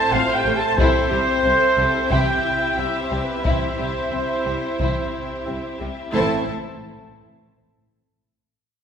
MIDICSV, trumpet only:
0, 0, Header, 1, 2, 480
1, 0, Start_track
1, 0, Key_signature, 0, "minor"
1, 0, Tempo, 664452
1, 565, Time_signature, 4, 2, 24, 8
1, 6384, End_track
2, 0, Start_track
2, 0, Title_t, "Trumpet"
2, 0, Program_c, 0, 56
2, 0, Note_on_c, 0, 81, 113
2, 89, Note_on_c, 0, 77, 87
2, 100, Note_off_c, 0, 81, 0
2, 254, Note_on_c, 0, 79, 69
2, 265, Note_off_c, 0, 77, 0
2, 411, Note_on_c, 0, 81, 79
2, 422, Note_off_c, 0, 79, 0
2, 565, Note_on_c, 0, 72, 91
2, 576, Note_off_c, 0, 81, 0
2, 1527, Note_on_c, 0, 79, 79
2, 1537, Note_off_c, 0, 72, 0
2, 2009, Note_on_c, 0, 76, 63
2, 2020, Note_off_c, 0, 79, 0
2, 2168, Note_off_c, 0, 76, 0
2, 2175, Note_on_c, 0, 72, 48
2, 2328, Note_off_c, 0, 72, 0
2, 2337, Note_on_c, 0, 71, 50
2, 2491, Note_off_c, 0, 71, 0
2, 2496, Note_on_c, 0, 72, 56
2, 4164, Note_off_c, 0, 72, 0
2, 4434, Note_on_c, 0, 69, 61
2, 4641, Note_off_c, 0, 69, 0
2, 6384, End_track
0, 0, End_of_file